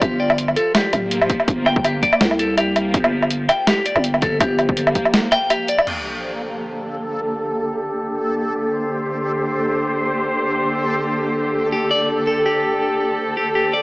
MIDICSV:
0, 0, Header, 1, 7, 480
1, 0, Start_track
1, 0, Key_signature, -2, "minor"
1, 0, Tempo, 365854
1, 22, Time_signature, 4, 2, 24, 8
1, 18136, End_track
2, 0, Start_track
2, 0, Title_t, "Clean electric guitar"
2, 0, Program_c, 0, 27
2, 20, Note_on_c, 0, 67, 77
2, 250, Note_off_c, 0, 67, 0
2, 258, Note_on_c, 0, 74, 75
2, 489, Note_off_c, 0, 74, 0
2, 739, Note_on_c, 0, 69, 77
2, 959, Note_off_c, 0, 69, 0
2, 979, Note_on_c, 0, 67, 84
2, 1919, Note_off_c, 0, 67, 0
2, 2181, Note_on_c, 0, 79, 96
2, 2411, Note_off_c, 0, 79, 0
2, 2421, Note_on_c, 0, 67, 75
2, 2651, Note_off_c, 0, 67, 0
2, 2660, Note_on_c, 0, 74, 79
2, 2890, Note_off_c, 0, 74, 0
2, 3140, Note_on_c, 0, 69, 73
2, 3360, Note_off_c, 0, 69, 0
2, 3380, Note_on_c, 0, 67, 73
2, 4319, Note_off_c, 0, 67, 0
2, 4583, Note_on_c, 0, 79, 107
2, 4811, Note_off_c, 0, 79, 0
2, 4822, Note_on_c, 0, 67, 85
2, 5051, Note_off_c, 0, 67, 0
2, 5060, Note_on_c, 0, 74, 78
2, 5290, Note_off_c, 0, 74, 0
2, 5542, Note_on_c, 0, 69, 74
2, 5760, Note_off_c, 0, 69, 0
2, 5782, Note_on_c, 0, 67, 79
2, 6720, Note_off_c, 0, 67, 0
2, 6981, Note_on_c, 0, 79, 101
2, 7211, Note_off_c, 0, 79, 0
2, 7222, Note_on_c, 0, 67, 73
2, 7451, Note_off_c, 0, 67, 0
2, 7463, Note_on_c, 0, 74, 79
2, 7692, Note_off_c, 0, 74, 0
2, 15383, Note_on_c, 0, 67, 72
2, 15611, Note_off_c, 0, 67, 0
2, 15622, Note_on_c, 0, 74, 74
2, 15851, Note_off_c, 0, 74, 0
2, 16101, Note_on_c, 0, 69, 75
2, 16320, Note_off_c, 0, 69, 0
2, 16344, Note_on_c, 0, 67, 83
2, 17281, Note_off_c, 0, 67, 0
2, 17542, Note_on_c, 0, 67, 76
2, 17689, Note_off_c, 0, 67, 0
2, 17781, Note_on_c, 0, 67, 75
2, 18010, Note_off_c, 0, 67, 0
2, 18020, Note_on_c, 0, 74, 77
2, 18136, Note_off_c, 0, 74, 0
2, 18136, End_track
3, 0, Start_track
3, 0, Title_t, "Cello section"
3, 0, Program_c, 1, 48
3, 7699, Note_on_c, 1, 69, 86
3, 7700, Note_on_c, 1, 50, 76
3, 7700, Note_on_c, 1, 58, 71
3, 7700, Note_on_c, 1, 67, 74
3, 11528, Note_off_c, 1, 69, 0
3, 11541, Note_on_c, 1, 72, 88
3, 15369, Note_off_c, 1, 72, 0
3, 15382, Note_on_c, 1, 69, 90
3, 18136, Note_off_c, 1, 50, 0
3, 18136, Note_off_c, 1, 58, 0
3, 18136, Note_off_c, 1, 67, 0
3, 18136, Note_off_c, 1, 69, 0
3, 18136, End_track
4, 0, Start_track
4, 0, Title_t, "Synth texture"
4, 0, Program_c, 2, 99
4, 0, Note_on_c, 2, 53, 84
4, 20, Note_on_c, 2, 58, 81
4, 7703, Note_on_c, 2, 69, 82
4, 7711, Note_off_c, 2, 53, 0
4, 7728, Note_off_c, 2, 58, 0
4, 15381, Note_on_c, 2, 72, 82
4, 15409, Note_off_c, 2, 69, 0
4, 18136, Note_off_c, 2, 72, 0
4, 18136, End_track
5, 0, Start_track
5, 0, Title_t, "808-style bass"
5, 0, Program_c, 3, 38
5, 20, Note_on_c, 3, 31, 103
5, 727, Note_off_c, 3, 31, 0
5, 1223, Note_on_c, 3, 26, 76
5, 1688, Note_off_c, 3, 26, 0
5, 1942, Note_on_c, 3, 31, 100
5, 2648, Note_off_c, 3, 31, 0
5, 2902, Note_on_c, 3, 36, 105
5, 3848, Note_off_c, 3, 36, 0
5, 3860, Note_on_c, 3, 31, 105
5, 4567, Note_off_c, 3, 31, 0
5, 5193, Note_on_c, 3, 31, 88
5, 5768, Note_off_c, 3, 31, 0
5, 5780, Note_on_c, 3, 31, 98
5, 6487, Note_off_c, 3, 31, 0
5, 18136, End_track
6, 0, Start_track
6, 0, Title_t, "Sub drop"
6, 0, Program_c, 4, 103
6, 7700, Note_on_c, 4, 60, 72
6, 9621, Note_off_c, 4, 60, 0
6, 18136, End_track
7, 0, Start_track
7, 0, Title_t, "Drums"
7, 19, Note_on_c, 9, 36, 117
7, 21, Note_on_c, 9, 42, 74
7, 21, Note_on_c, 9, 77, 51
7, 150, Note_off_c, 9, 36, 0
7, 152, Note_off_c, 9, 42, 0
7, 152, Note_off_c, 9, 77, 0
7, 392, Note_on_c, 9, 77, 82
7, 501, Note_on_c, 9, 42, 76
7, 523, Note_off_c, 9, 77, 0
7, 632, Note_off_c, 9, 42, 0
7, 632, Note_on_c, 9, 77, 50
7, 739, Note_on_c, 9, 42, 57
7, 763, Note_off_c, 9, 77, 0
7, 871, Note_off_c, 9, 42, 0
7, 978, Note_on_c, 9, 38, 119
7, 978, Note_on_c, 9, 42, 76
7, 978, Note_on_c, 9, 77, 77
7, 1110, Note_off_c, 9, 38, 0
7, 1110, Note_off_c, 9, 42, 0
7, 1110, Note_off_c, 9, 77, 0
7, 1219, Note_on_c, 9, 42, 65
7, 1219, Note_on_c, 9, 77, 51
7, 1350, Note_off_c, 9, 42, 0
7, 1350, Note_off_c, 9, 77, 0
7, 1459, Note_on_c, 9, 42, 73
7, 1590, Note_off_c, 9, 42, 0
7, 1594, Note_on_c, 9, 77, 79
7, 1700, Note_on_c, 9, 36, 103
7, 1700, Note_on_c, 9, 42, 63
7, 1725, Note_off_c, 9, 77, 0
7, 1831, Note_off_c, 9, 42, 0
7, 1832, Note_off_c, 9, 36, 0
7, 1833, Note_on_c, 9, 77, 51
7, 1940, Note_on_c, 9, 36, 118
7, 1941, Note_on_c, 9, 42, 71
7, 1964, Note_off_c, 9, 77, 0
7, 2072, Note_off_c, 9, 36, 0
7, 2072, Note_off_c, 9, 42, 0
7, 2180, Note_on_c, 9, 77, 77
7, 2311, Note_off_c, 9, 77, 0
7, 2312, Note_on_c, 9, 36, 99
7, 2421, Note_on_c, 9, 42, 74
7, 2421, Note_on_c, 9, 77, 52
7, 2443, Note_off_c, 9, 36, 0
7, 2553, Note_off_c, 9, 42, 0
7, 2553, Note_off_c, 9, 77, 0
7, 2660, Note_on_c, 9, 36, 59
7, 2661, Note_on_c, 9, 42, 58
7, 2791, Note_off_c, 9, 36, 0
7, 2791, Note_on_c, 9, 77, 82
7, 2792, Note_off_c, 9, 42, 0
7, 2897, Note_on_c, 9, 38, 114
7, 2897, Note_on_c, 9, 42, 74
7, 2922, Note_off_c, 9, 77, 0
7, 3028, Note_off_c, 9, 38, 0
7, 3028, Note_off_c, 9, 42, 0
7, 3032, Note_on_c, 9, 77, 51
7, 3139, Note_on_c, 9, 42, 64
7, 3163, Note_off_c, 9, 77, 0
7, 3271, Note_off_c, 9, 42, 0
7, 3379, Note_on_c, 9, 42, 71
7, 3379, Note_on_c, 9, 77, 74
7, 3510, Note_off_c, 9, 42, 0
7, 3510, Note_off_c, 9, 77, 0
7, 3620, Note_on_c, 9, 42, 63
7, 3620, Note_on_c, 9, 77, 52
7, 3752, Note_off_c, 9, 42, 0
7, 3752, Note_off_c, 9, 77, 0
7, 3857, Note_on_c, 9, 42, 73
7, 3860, Note_on_c, 9, 36, 111
7, 3988, Note_off_c, 9, 42, 0
7, 3990, Note_on_c, 9, 77, 89
7, 3991, Note_off_c, 9, 36, 0
7, 4121, Note_off_c, 9, 77, 0
7, 4231, Note_on_c, 9, 77, 54
7, 4336, Note_on_c, 9, 42, 79
7, 4362, Note_off_c, 9, 77, 0
7, 4467, Note_off_c, 9, 42, 0
7, 4578, Note_on_c, 9, 42, 60
7, 4578, Note_on_c, 9, 77, 77
7, 4709, Note_off_c, 9, 42, 0
7, 4709, Note_off_c, 9, 77, 0
7, 4818, Note_on_c, 9, 38, 114
7, 4818, Note_on_c, 9, 42, 78
7, 4818, Note_on_c, 9, 77, 53
7, 4949, Note_off_c, 9, 38, 0
7, 4949, Note_off_c, 9, 42, 0
7, 4949, Note_off_c, 9, 77, 0
7, 5059, Note_on_c, 9, 42, 62
7, 5190, Note_off_c, 9, 42, 0
7, 5190, Note_on_c, 9, 77, 83
7, 5299, Note_on_c, 9, 42, 75
7, 5321, Note_off_c, 9, 77, 0
7, 5430, Note_off_c, 9, 42, 0
7, 5430, Note_on_c, 9, 77, 55
7, 5536, Note_on_c, 9, 42, 64
7, 5540, Note_on_c, 9, 36, 103
7, 5562, Note_off_c, 9, 77, 0
7, 5667, Note_off_c, 9, 42, 0
7, 5671, Note_off_c, 9, 36, 0
7, 5779, Note_on_c, 9, 36, 117
7, 5779, Note_on_c, 9, 42, 80
7, 5779, Note_on_c, 9, 77, 85
7, 5910, Note_off_c, 9, 42, 0
7, 5910, Note_off_c, 9, 77, 0
7, 5911, Note_off_c, 9, 36, 0
7, 6017, Note_on_c, 9, 42, 36
7, 6017, Note_on_c, 9, 77, 53
7, 6148, Note_off_c, 9, 42, 0
7, 6148, Note_off_c, 9, 77, 0
7, 6152, Note_on_c, 9, 36, 100
7, 6258, Note_on_c, 9, 42, 81
7, 6283, Note_off_c, 9, 36, 0
7, 6389, Note_off_c, 9, 42, 0
7, 6389, Note_on_c, 9, 77, 83
7, 6498, Note_on_c, 9, 42, 62
7, 6500, Note_on_c, 9, 36, 57
7, 6521, Note_off_c, 9, 77, 0
7, 6629, Note_off_c, 9, 42, 0
7, 6631, Note_off_c, 9, 36, 0
7, 6632, Note_on_c, 9, 77, 57
7, 6740, Note_on_c, 9, 38, 114
7, 6740, Note_on_c, 9, 42, 82
7, 6763, Note_off_c, 9, 77, 0
7, 6871, Note_off_c, 9, 38, 0
7, 6871, Note_off_c, 9, 42, 0
7, 6978, Note_on_c, 9, 42, 66
7, 6978, Note_on_c, 9, 77, 88
7, 7109, Note_off_c, 9, 42, 0
7, 7109, Note_off_c, 9, 77, 0
7, 7219, Note_on_c, 9, 42, 77
7, 7219, Note_on_c, 9, 77, 55
7, 7350, Note_off_c, 9, 42, 0
7, 7350, Note_off_c, 9, 77, 0
7, 7457, Note_on_c, 9, 42, 68
7, 7588, Note_off_c, 9, 42, 0
7, 7590, Note_on_c, 9, 77, 83
7, 7701, Note_on_c, 9, 49, 79
7, 7721, Note_off_c, 9, 77, 0
7, 7832, Note_off_c, 9, 49, 0
7, 18136, End_track
0, 0, End_of_file